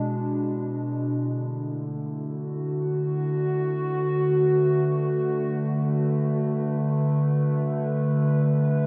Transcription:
0.00 1.17 B2 medium
0.00 1.17 G#3 medium
0.00 3.33 D4 medium
0.00 4.13 E4 medium
1.16 8.87 D3 medium
1.35 8.87 A3 medium
2.05 8.87 F#4 medium
3.78 8.87 B4 medium
8.58 8.87 G#4 medium

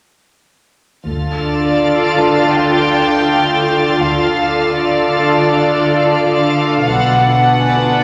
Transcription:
1.06 1.76 D2 soft
1.06 3.95 D2 medium
1.06 3.95 D3 soft
1.06 3.95 F4 soft
1.06 3.95 A4 soft
1.06 3.95 D5 soft
1.06 6.49 F6 soft
1.06 5.77 A6 soft
1.43 2.50 D5 soft
2.18 4.32 A4 soft
2.18 4.32 A5 soft
2.54 3.99 G5 medium
3.98 6.84 D2 medium
3.98 4.68 D2 soft
3.98 6.84 D3 soft
3.98 6.84 F4 soft
3.98 6.84 A4 soft
3.98 6.84 D5 soft
3.98 4.72 F5 soft
4.71 6.52 D5 medium
6.52 6.88 F5 soft
6.88 7.55 B1 soft
6.88 8.04 D2 medium
6.88 8.04 B2 soft
6.88 8.04 D4 soft
6.88 8.04 B4 soft
6.88 8.04 D5 soft
6.88 8.04 F#5 medium
7.59 8.04 G#5 soft

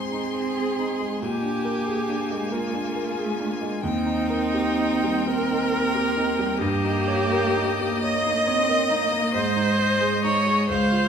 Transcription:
0.00 1.18 G#2 medium
0.00 1.00 G#3 soft
0.00 1.22 C4 medium
0.00 0.12 D#4 soft
0.00 0.58 G#4 soft
0.00 1.24 G#4 medium
0.00 0.35 C5 soft
0.00 1.21 C6 medium
0.12 0.48 D#4 soft
0.35 0.70 C5 soft
0.58 0.92 G#4 soft
0.79 1.13 D#4 soft
1.00 1.22 G#3 medium
1.21 3.80 A#2 medium
1.21 3.80 A#3 medium
1.21 2.54 G4 medium
1.21 3.80 G#5 medium
1.43 1.78 D4 soft
1.65 2.00 A#4 medium
1.87 2.22 G#4 medium
2.09 2.44 D4 medium
2.31 2.66 G#3 soft
2.52 3.83 F4 medium
2.52 2.87 A#4 medium
2.73 3.08 D4 medium
2.96 3.31 A#4 medium
3.18 3.53 G#4 medium
3.39 3.75 D4 medium
3.61 3.83 G#3 medium
3.83 6.55 D#2 medium
3.83 6.61 C4 medium
3.83 5.28 D#4 loud
3.83 6.59 G5 medium
4.06 4.44 D#4 soft
4.30 4.69 A#4 medium
4.54 4.94 G4 medium
4.79 5.18 D#4 medium
5.04 5.41 G3 medium
5.26 6.60 A#4 loud
5.26 5.63 A#4 medium
5.51 5.86 D#4 medium
5.73 6.07 A#4 medium
5.95 6.29 G4 medium
6.17 6.51 D#4 medium
6.39 6.60 G3 medium
6.58 9.32 G2 medium
6.58 8.02 A#3 loud
6.58 8.02 G4 loud
6.58 10.71 D#5 medium
6.84 7.22 D#4 medium
7.08 7.46 C#5 medium
7.32 7.71 A#4 medium
7.56 7.94 D#4 medium
7.80 8.17 A#3 medium
8.03 8.48 A#3 medium
8.03 8.39 C#5 medium
8.03 9.33 D#5 loud
8.26 8.61 D#4 medium
8.47 8.92 C4 medium
8.47 8.82 C#5 medium
8.69 9.04 A#4 medium
8.90 9.35 A#3 medium
8.90 9.26 D#4 medium
9.12 9.35 A#3 medium
9.34 10.66 G#2 medium
9.34 10.68 G#3 medium
9.34 10.22 C5 loud
9.56 9.93 D#4 medium
9.79 10.15 C5 medium
10.01 10.38 G#4 medium
10.24 10.61 D#4 medium
10.24 10.69 C#5 loud
10.46 10.70 G#3 medium
10.69 11.08 C#2 medium
10.69 11.08 G#3 medium
10.69 11.08 C5 loud
10.69 11.08 F5 medium
10.92 11.08 F4 medium

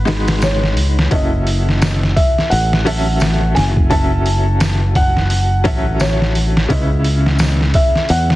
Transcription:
0.00 0.78 G#1 medium
0.00 0.05 G#3 medium
0.00 0.06 D#4 medium
0.00 0.07 F#4 medium
0.00 0.08 B4 medium
0.00 0.46 B4 loud
0.05 1.07 G#3 loud
0.05 1.08 D#4 loud
0.05 1.08 F#4 medium
0.05 1.09 B4 loud
0.05 snare loud
0.05 open hi-hat medium
0.28 snare loud
0.28 open hi-hat medium
0.42 1.14 C#5 medium
0.42 snare loud
0.42 open hi-hat medium
0.42 tambourine medium
0.63 snare soft
0.77 1.09 C#2 loud
0.77 open hi-hat medium
0.99 snare medium
1.11 2.14 F#1 medium
1.11 2.82 F#3 medium
1.11 2.82 C#4 medium
1.11 2.83 E4 medium
1.11 2.83 A4 medium
1.11 1.78 D#5 medium
1.11 kick loud
1.11 open hi-hat medium
1.47 open hi-hat medium
1.69 snare soft
1.82 snare loud
1.82 open hi-hat medium
1.82 tambourine medium
2.03 snare soft
2.16 2.52 E5 medium
2.16 kick medium
2.16 open hi-hat medium
2.38 snare soft
2.50 3.54 A1 loud
2.50 3.51 F#5 loud
2.50 open hi-hat medium
2.73 snare medium
2.85 3.87 F#3 loud
2.85 3.87 C#4 medium
2.85 3.88 A4 loud
2.85 3.88 E5 loud
2.85 open hi-hat medium
3.20 snare loud
3.20 open hi-hat medium
3.20 tambourine medium
3.55 5.65 F#1 medium
3.55 3.63 G#5 loud
3.55 snare medium
3.55 open hi-hat medium
3.77 kick medium
3.90 5.61 F#3 medium
3.90 5.62 C#4 medium
3.90 5.62 A4 medium
3.90 5.62 E5 loud
3.90 4.98 A5 loud
3.90 kick loud
3.90 open hi-hat medium
4.26 open hi-hat medium
4.60 snare loud
4.60 open hi-hat medium
4.60 tambourine medium
4.95 6.03 F#5 loud
4.95 kick loud
4.95 open hi-hat medium
5.17 snare soft
5.30 open hi-hat medium
5.64 6.67 A1 medium
5.64 6.66 F#3 loud
5.64 6.66 C#4 medium
5.64 6.67 A4 medium
5.64 6.67 E5 loud
5.64 kick loud
5.64 open hi-hat medium
6.00 6.66 C#5 medium
6.00 snare loud
6.00 open hi-hat medium
6.00 tambourine medium
6.22 snare soft
6.35 open hi-hat medium
6.57 snare medium
6.68 7.72 C#2 medium
6.68 8.36 C#3 medium
6.68 8.36 C#4 medium
6.68 8.36 E4 loud
6.68 8.36 B4 medium
6.68 7.36 D#5 medium
6.68 kick medium
6.68 open hi-hat medium
7.04 open hi-hat medium
7.26 snare soft
7.39 snare loud
7.39 open hi-hat medium
7.39 tambourine medium
7.61 snare soft
7.74 8.07 E5 medium
7.74 kick loud
7.74 open hi-hat medium
7.95 snare soft
8.09 8.36 E2 loud
8.09 8.36 F#5 loud
8.09 open hi-hat medium
8.30 snare medium

